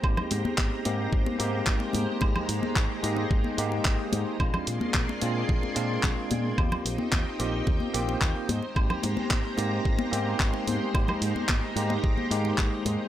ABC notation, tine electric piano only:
X:1
M:4/4
L:1/8
Q:1/4=110
K:Ablyd
V:1 name="Tine electric piano"
[B,CEG]3 [B,CEG]2 [B,CEG]3 | [A,B,EG]3 [A,B,EG]2 [A,B,EG]3 | [A,CDF]3 [A,CDF]2 [A,CDF]3 | [B,CFG]3 [B,CFG]2 [B,CFG]2 z |
[B,CEG]3 [B,CEG]2 [B,CEG]3 | [A,B,EG]3 [A,B,EG]2 [A,B,EG]3 |]